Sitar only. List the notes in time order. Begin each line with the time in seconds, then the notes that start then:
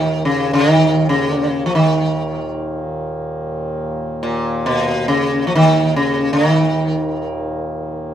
Already playing: D#3
0.25 C#3
0.53 C#3
0.70 D#3
1.09 C#3
1.66 F3
1.75 D#3
4.23 A#2
4.66 B2
5.08 C#3
5.47 F3
5.55 D#3
5.96 C#3
6.33 D#3